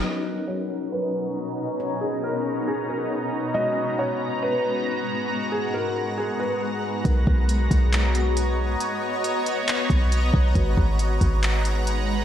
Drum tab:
HH |--------|--------|--------|--------|
CP |--------|--------|--------|--------|
BD |--------|--------|--------|--------|

HH |x-xxxxx-|x-xxxxx-|x-xxxxx-|
CP |----x---|----x---|----x---|
BD |oo-o----|-----o-o|oo-o----|